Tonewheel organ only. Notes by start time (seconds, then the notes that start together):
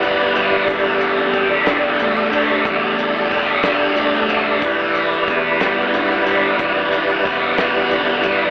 Already playing: G3 E4 B4 D5
0.67 D4 A4
4.63 G3 E4 B4